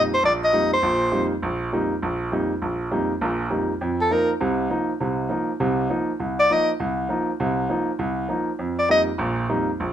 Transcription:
Already playing: F2 G3 A#3 D#4
0.14 C5
0.23 A#1 D5
0.44 D#5
0.53 F2 G3 A#3 D#4
0.73 C5
0.82 A#1 A#2
1.12 F2 G3 A#3 D#4
1.43 A#1
1.73 F2 G3 A#3 D#4
2.02 A#1
2.32 F2 G3 A#3 D#4
2.62 A#1
2.91 F2 G3 A#3 D#4
3.21 A#1 A#2
3.50 F2 G3 A#3 D#4
3.81 F2
4.01 A4
4.10 F3 A#3 D#4 A#4
4.41 C2 C3
4.69 F3 A#3 D#4
5.00 C2 C3
5.29 F3 A#3 D#4
5.60 C2 C3
5.89 F3 A#3 D#4
6.20 C2
6.40 D5
6.50 F3 A#3 D#4 D#5
6.80 C2
7.09 F3 A#3 D#4
7.40 C2 C3
7.69 F3 A#3 D#4
7.99 C2
8.28 F3 A#3 D#4
8.59 F2
8.79 D5
8.89 F2 G3 A#3 D#4 D#5
9.18 A#1 A#2
9.49 F2 G3 A#3 D#4
9.80 A#1

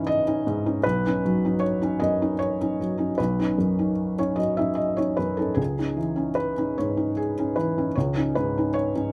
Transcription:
Already playing: C#2 G#2 E3 C#4 D#4 B4 C#5
0.07 D#5
0.27 C#4 D#4
0.47 G#2
0.66 C#4 D#4
0.83 B1 B4
1.07 C#4 D#4
1.25 F#3
1.45 C#4 D#4
1.60 C#5
1.82 C#4 D#4
2.00 F#2 D#5
2.22 C#4 D#4
2.39 C#5
2.61 C#4 D#4
2.81 F#3
2.98 C#4 D#4
3.18 B1 B4
3.39 C#4 D#4
3.58 F#2
3.79 C#4 D#4
4.18 C#4 D#4 C#5
4.36 F#3 D#5
4.57 C#4 D#4 E5
4.75 D#5
4.97 C#4 D#4 C#5
5.17 F#2 B4
5.37 C#4 D#4 A4
5.54 C#2 G#4
5.79 C#4 D#4
5.97 E3
6.16 C#4 D#4
6.35 B4
6.58 C#4 D#4
6.78 G#2 C#5
6.97 C#4 D#4
7.17 G#4
7.39 C#4 D#4
7.56 E3 B4
7.78 C#4 D#4
7.95 C#2 C#5
8.17 C#4 D#4
8.35 G#2 B4
8.58 C#4 D#4
8.74 C#5
8.96 C#4 D#4

